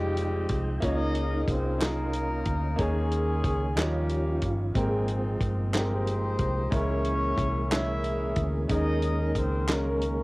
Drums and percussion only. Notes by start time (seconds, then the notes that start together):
0.17 closed hi-hat
0.49 kick, closed hi-hat
0.82 kick, closed hi-hat
1.15 closed hi-hat
1.48 kick, closed hi-hat
1.81 snare, clap, closed hi-hat
2.13 closed hi-hat
2.45 kick, closed hi-hat
2.78 kick, closed hi-hat
3.11 closed hi-hat
3.44 kick, closed hi-hat
3.77 snare, clap, closed hi-hat
4.09 closed hi-hat
4.42 kick, closed hi-hat
4.75 kick, closed hi-hat
5.08 closed hi-hat
5.41 kick, closed hi-hat
5.74 snare, clap, closed hi-hat
6.07 closed hi-hat
6.39 kick, closed hi-hat
6.72 kick, closed hi-hat
7.05 closed hi-hat
7.38 kick, closed hi-hat
7.71 snare, clap, closed hi-hat
8.04 closed hi-hat
8.36 kick, closed hi-hat
8.69 kick, closed hi-hat
9.02 closed hi-hat
9.35 kick, closed hi-hat
9.68 snare, clap, closed hi-hat
10.02 closed hi-hat